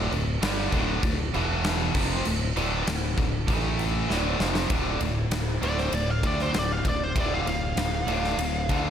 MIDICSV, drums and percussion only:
0, 0, Header, 1, 2, 480
1, 0, Start_track
1, 0, Key_signature, -1, "minor"
1, 0, Tempo, 612870
1, 1766, Time_signature, 4, 2, 24, 8
1, 6970, End_track
2, 0, Start_track
2, 0, Title_t, "Drums"
2, 97, Note_on_c, 9, 49, 61
2, 175, Note_off_c, 9, 49, 0
2, 333, Note_on_c, 9, 49, 86
2, 337, Note_on_c, 9, 38, 122
2, 411, Note_off_c, 9, 49, 0
2, 415, Note_off_c, 9, 38, 0
2, 565, Note_on_c, 9, 49, 61
2, 568, Note_on_c, 9, 36, 82
2, 644, Note_off_c, 9, 49, 0
2, 646, Note_off_c, 9, 36, 0
2, 806, Note_on_c, 9, 49, 77
2, 808, Note_on_c, 9, 36, 113
2, 885, Note_off_c, 9, 49, 0
2, 886, Note_off_c, 9, 36, 0
2, 1051, Note_on_c, 9, 49, 58
2, 1129, Note_off_c, 9, 49, 0
2, 1287, Note_on_c, 9, 49, 67
2, 1291, Note_on_c, 9, 38, 95
2, 1365, Note_off_c, 9, 49, 0
2, 1369, Note_off_c, 9, 38, 0
2, 1524, Note_on_c, 9, 49, 99
2, 1527, Note_on_c, 9, 36, 108
2, 1603, Note_off_c, 9, 49, 0
2, 1605, Note_off_c, 9, 36, 0
2, 1764, Note_on_c, 9, 49, 76
2, 1842, Note_off_c, 9, 49, 0
2, 2010, Note_on_c, 9, 49, 58
2, 2088, Note_off_c, 9, 49, 0
2, 2249, Note_on_c, 9, 49, 79
2, 2253, Note_on_c, 9, 38, 110
2, 2327, Note_off_c, 9, 49, 0
2, 2331, Note_off_c, 9, 38, 0
2, 2488, Note_on_c, 9, 36, 89
2, 2489, Note_on_c, 9, 49, 62
2, 2566, Note_off_c, 9, 36, 0
2, 2568, Note_off_c, 9, 49, 0
2, 2727, Note_on_c, 9, 36, 113
2, 2727, Note_on_c, 9, 49, 79
2, 2805, Note_off_c, 9, 36, 0
2, 2805, Note_off_c, 9, 49, 0
2, 2968, Note_on_c, 9, 49, 67
2, 3047, Note_off_c, 9, 49, 0
2, 3213, Note_on_c, 9, 38, 58
2, 3291, Note_off_c, 9, 38, 0
2, 3448, Note_on_c, 9, 38, 86
2, 3526, Note_off_c, 9, 38, 0
2, 3566, Note_on_c, 9, 38, 93
2, 3644, Note_off_c, 9, 38, 0
2, 3679, Note_on_c, 9, 51, 93
2, 3682, Note_on_c, 9, 36, 108
2, 3758, Note_off_c, 9, 51, 0
2, 3760, Note_off_c, 9, 36, 0
2, 3920, Note_on_c, 9, 51, 67
2, 3999, Note_off_c, 9, 51, 0
2, 4161, Note_on_c, 9, 51, 91
2, 4165, Note_on_c, 9, 38, 112
2, 4239, Note_off_c, 9, 51, 0
2, 4243, Note_off_c, 9, 38, 0
2, 4408, Note_on_c, 9, 51, 66
2, 4487, Note_off_c, 9, 51, 0
2, 4526, Note_on_c, 9, 38, 34
2, 4604, Note_off_c, 9, 38, 0
2, 4641, Note_on_c, 9, 51, 82
2, 4719, Note_off_c, 9, 51, 0
2, 4882, Note_on_c, 9, 36, 94
2, 4884, Note_on_c, 9, 51, 67
2, 4961, Note_off_c, 9, 36, 0
2, 4962, Note_off_c, 9, 51, 0
2, 5006, Note_on_c, 9, 38, 31
2, 5084, Note_off_c, 9, 38, 0
2, 5123, Note_on_c, 9, 51, 73
2, 5127, Note_on_c, 9, 38, 91
2, 5202, Note_off_c, 9, 51, 0
2, 5206, Note_off_c, 9, 38, 0
2, 5364, Note_on_c, 9, 36, 89
2, 5365, Note_on_c, 9, 51, 71
2, 5442, Note_off_c, 9, 36, 0
2, 5443, Note_off_c, 9, 51, 0
2, 5606, Note_on_c, 9, 36, 107
2, 5607, Note_on_c, 9, 51, 88
2, 5684, Note_off_c, 9, 36, 0
2, 5686, Note_off_c, 9, 51, 0
2, 5852, Note_on_c, 9, 51, 70
2, 5930, Note_off_c, 9, 51, 0
2, 6087, Note_on_c, 9, 51, 87
2, 6090, Note_on_c, 9, 38, 99
2, 6165, Note_off_c, 9, 51, 0
2, 6169, Note_off_c, 9, 38, 0
2, 6327, Note_on_c, 9, 51, 64
2, 6405, Note_off_c, 9, 51, 0
2, 6454, Note_on_c, 9, 38, 31
2, 6532, Note_off_c, 9, 38, 0
2, 6568, Note_on_c, 9, 51, 93
2, 6647, Note_off_c, 9, 51, 0
2, 6809, Note_on_c, 9, 36, 87
2, 6809, Note_on_c, 9, 51, 77
2, 6887, Note_off_c, 9, 36, 0
2, 6887, Note_off_c, 9, 51, 0
2, 6970, End_track
0, 0, End_of_file